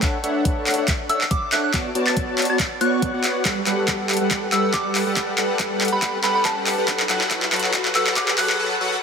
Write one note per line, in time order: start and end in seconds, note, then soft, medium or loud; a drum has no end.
0.02 0.18 D4 loud
0.02 0.18 A4 medium
0.02 0.18 E5 medium
0.02 0.18 F#5 loud
0.02 kick loud
0.02 clap medium
0.02 closed hi-hat medium
0.24 0.75 D4 medium
0.24 0.75 A4 medium
0.24 0.75 C#5 medium
0.24 0.75 E5 medium
0.24 0.75 F#5 loud
0.24 closed hi-hat medium
0.45 kick loud
0.45 closed hi-hat medium
0.67 clap medium
0.67 closed hi-hat soft
0.70 closed hi-hat medium
0.74 closed hi-hat medium
0.78 0.87 D4 medium
0.78 0.87 A4 medium
0.78 0.87 C#5 medium
0.78 0.87 E5 medium
0.78 0.87 F#5 loud
0.88 kick loud
0.88 clap medium
0.88 closed hi-hat medium
1.09 1.20 D4 medium
1.09 1.20 A4 medium
1.09 1.20 C#5 medium
1.09 1.20 E5 medium
1.09 1.20 F#5 medium
1.09 1.24 E6 medium
1.09 closed hi-hat medium
1.21 clap medium
1.31 1.45 D6 medium
1.31 kick loud
1.31 closed hi-hat medium
1.52 1.71 D4 medium
1.52 1.71 A4 medium
1.52 1.71 C#5 medium
1.52 1.71 E5 medium
1.52 1.71 F#5 medium
1.52 1.60 F#6 medium
1.52 clap medium
1.52 closed hi-hat medium
1.64 1.70 F#6 medium
1.74 1.89 B3 medium
1.74 1.89 F#4 medium
1.74 1.89 C#5 medium
1.74 1.89 D5 medium
1.74 kick loud
1.74 clap medium
1.74 closed hi-hat medium
1.95 2.47 B3 medium
1.95 2.47 F#4 medium
1.95 2.47 C#5 medium
1.95 2.47 D5 medium
1.95 2.47 A5 loud
1.95 closed hi-hat medium
2.07 2.20 A6 medium
2.07 clap medium
2.17 kick loud
2.17 closed hi-hat medium
2.38 clap medium
2.38 closed hi-hat soft
2.42 closed hi-hat medium
2.45 closed hi-hat medium
2.50 2.58 B3 medium
2.50 2.58 F#4 medium
2.50 2.58 C#5 medium
2.50 2.58 D5 medium
2.50 2.58 A5 loud
2.50 2.62 A6 medium
2.59 kick loud
2.59 clap medium
2.59 closed hi-hat medium
2.81 3.11 B3 medium
2.81 3.11 F#4 medium
2.81 3.11 C#5 medium
2.81 3.11 D5 medium
2.81 3.11 C#6 loud
2.81 3.41 F#6 medium
2.81 closed hi-hat medium
3.02 kick loud
3.02 closed hi-hat medium
3.14 3.43 B3 loud
3.14 3.43 F#4 medium
3.14 3.43 C#5 medium
3.14 3.43 D5 medium
3.14 3.43 F#5 loud
3.24 clap medium
3.24 closed hi-hat medium
3.45 3.61 G3 medium
3.45 3.61 G4 medium
3.45 3.61 A4 medium
3.45 3.61 B4 medium
3.45 3.61 F#5 loud
3.45 kick medium
3.45 clap medium
3.45 closed hi-hat medium
3.45 riser medium
3.67 4.18 G3 medium
3.67 4.18 G4 medium
3.67 4.18 A4 medium
3.67 4.18 B4 medium
3.67 4.18 F#5 medium
3.67 clap medium
3.67 closed hi-hat medium
3.88 kick medium
3.88 clap medium
3.88 closed hi-hat medium
4.09 clap medium
4.09 closed hi-hat soft
4.13 closed hi-hat medium
4.17 closed hi-hat medium
4.21 4.29 G3 medium
4.21 4.29 G4 medium
4.21 4.29 A4 medium
4.21 4.29 B4 medium
4.21 4.29 F#5 medium
4.31 4.46 G3 medium
4.31 4.46 G4 medium
4.31 kick loud
4.31 clap medium
4.31 closed hi-hat medium
4.52 5.04 G3 medium
4.52 5.04 G4 medium
4.52 5.04 A4 medium
4.52 5.04 B4 medium
4.52 5.04 F#5 loud
4.52 4.66 E6 medium
4.52 clap medium
4.52 closed hi-hat medium
4.74 4.88 D6 medium
4.74 kick loud
4.74 clap medium
4.74 closed hi-hat medium
4.95 clap medium
4.95 open hi-hat medium
5.07 5.15 G3 medium
5.07 5.15 G4 medium
5.07 5.15 A4 medium
5.07 5.15 B4 medium
5.07 5.15 F#5 medium
5.17 5.32 G3 medium
5.17 5.32 G4 medium
5.17 5.32 B4 medium
5.17 5.32 F#5 loud
5.17 kick loud
5.17 clap medium
5.17 closed hi-hat medium
5.38 5.90 G3 medium
5.38 5.90 G4 medium
5.38 5.90 A4 medium
5.38 5.90 B4 medium
5.38 5.90 F#5 loud
5.38 clap medium
5.38 closed hi-hat medium
5.59 kick loud
5.59 clap medium
5.59 closed hi-hat medium
5.81 clap medium
5.81 closed hi-hat soft
5.85 closed hi-hat medium
5.88 closed hi-hat medium
5.92 6.01 G3 medium
5.92 6.01 G4 medium
5.92 6.01 A4 medium
5.92 6.01 B4 medium
5.92 6.01 F#5 medium
5.92 6.05 B5 medium
6.02 6.18 G3 medium
6.02 6.18 G4 medium
6.02 6.18 A4 medium
6.02 6.18 B4 medium
6.02 6.18 F#5 loud
6.02 kick loud
6.02 clap medium
6.02 closed hi-hat medium
6.24 6.75 G3 medium
6.24 6.75 G4 medium
6.24 6.75 A4 medium
6.24 6.75 B4 medium
6.24 6.75 F#5 loud
6.24 6.31 B5 medium
6.24 clap medium
6.24 closed hi-hat medium
6.35 6.42 B5 medium
6.45 6.78 A5 medium
6.45 kick loud
6.45 clap medium
6.45 closed hi-hat medium
6.67 clap medium
6.67 open hi-hat medium
6.78 6.86 G3 medium
6.78 6.86 G4 medium
6.78 6.86 A4 medium
6.78 6.86 B4 medium
6.78 6.86 F#5 loud
6.88 7.04 F#3 loud
6.88 7.04 F#4 medium
6.88 7.04 A4 medium
6.88 7.04 B4 medium
6.88 7.04 F#5 loud
6.88 kick loud
6.88 clap medium
6.88 closed hi-hat medium
7.00 clap medium
7.09 7.29 F#3 loud
7.09 7.29 F#4 medium
7.09 7.29 A4 medium
7.09 7.29 B4 medium
7.09 7.29 F#5 loud
7.09 clap medium
7.09 closed hi-hat medium
7.21 clap medium
7.31 7.46 F#3 loud
7.31 7.46 F#4 medium
7.31 7.46 A4 medium
7.31 7.46 B4 medium
7.31 7.46 F#5 loud
7.31 kick loud
7.31 clap medium
7.31 closed hi-hat medium
7.42 clap medium
7.52 7.72 F#3 loud
7.52 7.72 F#4 medium
7.52 7.72 A4 medium
7.52 7.72 B4 medium
7.52 7.72 F#5 loud
7.52 clap medium
7.52 closed hi-hat soft
7.56 closed hi-hat medium
7.59 closed hi-hat medium
7.64 clap medium
7.74 7.89 F#3 medium
7.74 7.89 F#4 medium
7.74 7.89 A4 medium
7.74 7.89 B4 medium
7.74 kick loud
7.74 clap loud
7.74 closed hi-hat medium
7.85 clap medium
7.95 8.15 F#3 medium
7.95 8.15 F#4 medium
7.95 8.15 A4 medium
7.95 8.15 B4 medium
7.95 8.15 F#5 loud
7.95 8.09 E6 medium
7.95 clap medium
7.95 closed hi-hat medium
8.07 clap medium
8.17 8.32 F#3 loud
8.17 8.32 F#4 medium
8.17 8.32 A4 medium
8.17 8.32 B4 medium
8.17 8.32 F#5 loud
8.17 8.31 D6 medium
8.17 kick loud
8.17 clap loud
8.17 closed hi-hat medium
8.28 clap medium
8.38 8.58 F#3 loud
8.38 8.58 F#4 medium
8.38 8.58 A4 medium
8.38 8.58 B4 medium
8.38 8.58 F#5 loud
8.38 8.45 F#6 medium
8.38 clap loud
8.38 open hi-hat loud
8.50 8.56 F#6 medium
8.50 clap medium
8.59 8.75 F#3 loud
8.59 8.75 F#4 loud
8.59 8.75 A4 medium
8.59 8.75 B4 medium
8.59 8.75 F#5 loud
8.81 8.96 F#3 loud
8.81 8.96 F#4 medium
8.81 8.96 A4 medium
8.81 8.96 B4 medium
8.81 8.96 F#5 loud